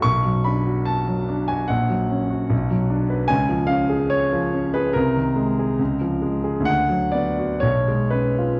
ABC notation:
X:1
M:2/4
L:1/16
Q:1/4=72
K:C#phr
V:1 name="Grand piano"
c'2 b2 a3 g | f6 z2 | g2 ^e2 c3 B | ^A6 z2 |
f2 d2 c2 B2 |]
V:2 name="Grand piano" clef=bass
B,,, F, D F2 F, D F | ^A,,, F, C F B,,, F, D B | C,, ^E, C G2 E, C G | ^B,,, ^D, G, G C,, ^E, G, G |
D,, F, B, F B,,, G, C ^E |]